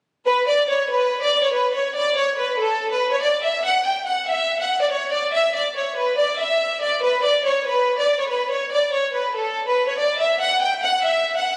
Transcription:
0.26 B4
0.48 D5
0.69 C#5
0.90 B4
1.22 D5
1.43 C#5
1.53 B4
1.74 C#5
1.95 D5
2.17 C#5
2.38 B4
2.59 A4
2.91 B4
3.12 C#5
3.22 D5
3.43 E5
3.64 F#5
3.85 G5
4.07 F#5
4.28 E5
4.60 F#5
4.81 D5
4.91 C#5
5.12 D5
5.33 E5
5.55 D5
5.76 C#5
5.97 B4
6.18 D5
6.39 E5
6.81 D5
7.03 B4
7.24 D5
7.45 C#5
7.66 B4
7.98 D5
8.19 C#5
8.29 B4
8.50 C#5
8.71 D5
8.93 C#5
9.14 B4
9.35 A4
9.67 B4
9.88 C#5
9.98 D5
10.20 E5
10.41 F#5
10.61 G5
10.83 F#5
11.04 E5
11.36 F#5

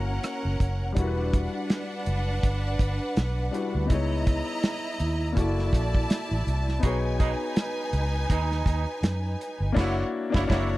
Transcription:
Already playing: G1 A#3 C#4 E4 F#4 A#4 F#5
0.23 cross-stick, closed hi-hat
0.45 F#1
0.60 F#1, kick, closed hi-hat
0.82 F1
0.92 G3 D4 B4 F#5
0.96 E1 D4 E4 F#4, kick, closed hi-hat
1.01 A#4
1.07 B4
1.33 kick, closed hi-hat
1.70 snare, closed hi-hat
2.06 F#1, closed hi-hat
2.43 G1, kick, closed hi-hat
2.79 G1, kick, closed hi-hat
3.17 B1, snare, closed hi-hat
3.51 G3 D4 E4 F#4 B4, closed hi-hat
3.75 D2
3.86 B3 D#4
3.90 C#2 E4 G#4 D#5 A#5, kick, closed hi-hat
3.94 C#5
4.27 kick, closed hi-hat
4.63 snare, closed hi-hat
5.00 D#2, closed hi-hat
5.32 A#3 E4 D5 A5
5.37 F#1 F#4 A4 D5, kick, closed hi-hat
5.59 snare
5.73 A#1, kick, closed hi-hat
5.94 kick
6.10 snare, closed hi-hat
6.31 A1
6.47 C2, closed hi-hat
6.69 snare
6.79 G#3 B3 D#4
6.83 B1 B2 D#4 F#4 G#4 B4 C#5 G#5, kick, closed hi-hat
7.19 B2 G#3 D#4, kick, closed hi-hat
7.56 snare, closed hi-hat
7.93 C#2, closed hi-hat
8.30 D#2 B2 G#3 D#4, kick, closed hi-hat
8.52 snare
8.66 D#2, kick, closed hi-hat
9.03 F#2, snare, closed hi-hat
9.41 closed hi-hat
9.60 G1
9.72 A#3 D4 E4 C#5 F#5
9.76 F#1 C#3 A#3 E4 F#4, kick, snare, crash
9.81 C#5
10.30 C#3 A#3 D4
10.34 F#1 D4 E4 F#4 C#5 F#5, kick, snare
10.38 C#5
10.45 A#3 D4 E4
10.49 F#1 C#3 A#3 E4 F#4 C#5 F#5, kick, snare
10.53 C#5

